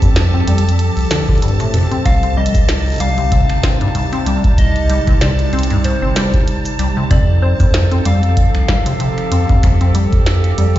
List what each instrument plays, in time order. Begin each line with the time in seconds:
Already playing: ambient pad F3 C4 G4 A4, synth texture A5
0.02 analog synth bass F2, acid bass G2, kick, closed hi-hat, shaker
0.16 acid bass C2, snare, closed hi-hat
0.34 acid bass C4
0.47 analog synth bass F2, acid bass G3, closed hi-hat
0.58 closed hi-hat
0.69 closed hi-hat
0.79 closed hi-hat
0.97 analog synth bass C2, closed hi-hat
0.99 closed hi-hat
1.01 closed hi-hat
1.03 closed hi-hat
1.05 closed hi-hat
1.07 closed hi-hat
1.09 acid bass D3, finger snap, snare, closed hi-hat
1.11 closed hi-hat, shaker
1.28 acid bass D3, kick, closed hi-hat
1.38 closed hi-hat
1.42 acid bass G2, closed hi-hat
1.48 closed hi-hat
1.60 acid bass A2, finger snap, closed hi-hat, shaker
1.74 analog synth bass F2, acid bass C3, finger snap, closed hi-hat
1.78 finger snap
1.83 finger snap
1.87 finger snap
1.91 acid bass C4, closed hi-hat
2.05 acid bass C2, analog synth bass C2, ambient pad C3, soft synth lead F5, finger snap, kick, closed hi-hat
2.23 acid bass C4, closed hi-hat
2.37 acid bass G3, soft synth lead D#5
2.46 closed hi-hat
2.50 ambient pad D#4
2.55 analog synth bass C2, kick, closed hi-hat, shaker
2.69 snare, closed hi-hat
2.86 closed hi-hat
2.88 closed hi-hat
2.90 closed hi-hat
2.92 closed hi-hat
2.94 ambient pad G3, closed hi-hat
2.96 closed hi-hat
2.98 analog synth bass C2, acid bass G3, closed hi-hat
3.00 soft synth lead F5, closed hi-hat
3.18 acid bass C3, closed hi-hat
3.32 acid bass C3, kick, closed hi-hat
3.49 analog synth bass G1, finger snap, closed hi-hat
3.63 acid bass C4, kick, snare, closed hi-hat
3.81 acid bass G2, closed hi-hat
3.95 acid bass C2, closed hi-hat
4.12 acid bass C4, finger snap, closed hi-hat
4.26 analog synth bass C2, acid bass G3, closed hi-hat
4.44 kick, closed hi-hat
4.58 analog synth bass C2, soft synth lead D#5, kick, closed hi-hat
4.76 closed hi-hat
4.90 acid bass G3, closed hi-hat
5.07 analog synth bass C2, acid bass C3, kick, closed hi-hat
5.21 acid bass C3, soft synth lead D5, snare, closed hi-hat
5.39 closed hi-hat
5.53 analog synth bass C2, acid bass C4, closed hi-hat
5.59 closed hi-hat
5.63 closed hi-hat
5.70 acid bass G2, closed hi-hat
5.84 acid bass C2, soft synth lead C5, closed hi-hat
6.02 analog synth bass G1, acid bass C4
6.16 acid bass G3, finger snap, snare, closed hi-hat, shaker
6.34 kick, closed hi-hat
6.48 closed hi-hat
6.65 closed hi-hat, shaker
6.79 analog synth bass C2, acid bass G3, finger snap, closed hi-hat
6.97 acid bass C3
7.11 analog synth bass F2, acid bass C3, ambient pad F3, soft synth lead D5, finger snap, kick, closed hi-hat
7.40 acid bass C4, ambient pad A4, soft synth lead C5
7.60 analog synth bass F2, acid bass G2, kick, closed hi-hat, shaker
7.69 ambient pad C4
7.74 acid bass C2, snare, closed hi-hat
7.91 acid bass C4, closed hi-hat
8.05 analog synth bass F2, acid bass G3, soft synth lead F5, closed hi-hat
8.17 ambient pad G4
8.23 closed hi-hat
8.37 kick, closed hi-hat
8.55 analog synth bass C2, finger snap, closed hi-hat
8.68 acid bass G3, kick, snare
8.86 acid bass C3, closed hi-hat
9.00 acid bass C3, closed hi-hat
9.18 finger snap, closed hi-hat
9.32 analog synth bass F2, acid bass C4, closed hi-hat
9.49 acid bass G2, kick, closed hi-hat
9.63 acid bass C2, analog synth bass F2, finger snap, kick, closed hi-hat
9.81 acid bass C4, closed hi-hat
9.95 acid bass G3, closed hi-hat
10.13 analog synth bass F2, kick, closed hi-hat
10.26 snare, closed hi-hat
10.44 closed hi-hat
10.58 analog synth bass F2, acid bass G3, closed hi-hat
10.76 acid bass C3, closed hi-hat